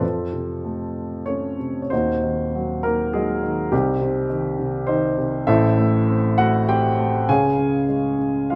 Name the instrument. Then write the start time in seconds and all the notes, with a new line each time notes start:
grand piano
0.00 F2 C4 F4 A4
0.33 C3
0.65 A3
1.26 A3 C#4 A4 C#5
1.59 C3
1.82 C#5
1.90 D#1 D#2 C4 D#4 F#4 C5
2.24 D#3
2.55 F#3
2.83 D#3 A#3 A#4
3.13 F#3 G#3 D#4 G#4
3.43 D#3
3.72 C2 G3 C4 D#4 G4
4.01 C3
4.30 D#3
4.59 C3
4.87 D#3 C4 D#4 C5
5.18 C3
5.47 A1 A2 E4 A4 C5 E5
5.78 A3
6.08 C4
6.38 A3 F#4 F#5
6.69 C4 G4 C5 G5
6.99 A3
7.29 C#2 C#3 G#4 C#5 F5 G#5
7.59 C#3
7.89 G#3
8.19 C#3
8.50 G#3 F4 G#4 F5